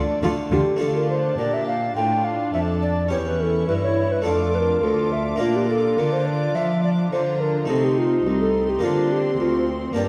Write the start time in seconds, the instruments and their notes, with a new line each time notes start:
Already playing: harpsichord D3 A3, violin section D4 D5, recorder D5
0.23 double bass section D2, cello section D3, harpsichord D3 A3 D4 F4, viola section F4
0.51 double bass section D2, harpsichord D3, cello section D3, viola section F4, recorder G4
0.76 harpsichord A3 D4 F4
0.81 harpsichord D3, cello section D3, viola section D4, violin section F4 A5, recorder A4
0.96 recorder A#4
1.10 recorder C5
1.39 harpsichord A#2, cello section A#2, violin section G4, recorder D5
1.54 recorder E5
1.67 recorder F5
1.96 cello section A2, harpsichord A2, viola section D4, violin section F4, recorder G5
2.24 recorder F5
2.54 harpsichord F2, cello section F2, violin section A4 A5, recorder E5
2.82 recorder D5
3.09 cello section E2, harpsichord E2 C#4 G4, viola section C#4, violin section E4 C#6, recorder C#5
3.26 recorder B4
3.39 recorder A4 A#4
3.68 cello section G2, harpsichord G2, viola section E4, recorder B4
3.83 recorder C#5
4.12 recorder B4
4.22 cello section F2, harpsichord A3 D4 F4, recorder A4
4.26 harpsichord F2, violin section D4 D6, viola section F4
4.55 recorder A#4 B4
4.83 cello section D2, harpsichord D2, violin section D4 D6, viola section F4, recorder A4
5.12 recorder E5
5.36 harpsichord A#3 D4 F4
5.40 cello section A#2, harpsichord A#2, viola section D4, violin section F4, recorder F4
5.56 recorder G4
5.69 recorder A4
5.98 harpsichord D3, cello section D3, viola section D4, recorder A#4
6.12 recorder C5
6.26 recorder D5
6.55 harpsichord F3, cello section F3, recorder E5
6.83 recorder D5
7.12 cello section D3, harpsichord D3, violin section F4 A#5, recorder C5
7.41 recorder A#4
7.65 harpsichord A3 D#4, recorder A4, violin section C6
7.69 cello section C3, harpsichord C3, violin section C4, viola section D#4
7.84 recorder G4
7.98 recorder F4
8.26 harpsichord C2, cello section C2, violin section C4 C6, recorder G4
8.41 recorder A4
8.69 recorder G4
8.79 harpsichord A#3 D4 F4
8.83 cello section D3, harpsichord D3, viola section D4, recorder F4
9.12 recorder G4
9.40 cello section D2, harpsichord D2, viola section C4, recorder F4
9.93 cello section G2, harpsichord A#3 D4 G4, viola section A#3, violin section D4 A#5
9.97 harpsichord G2, recorder D5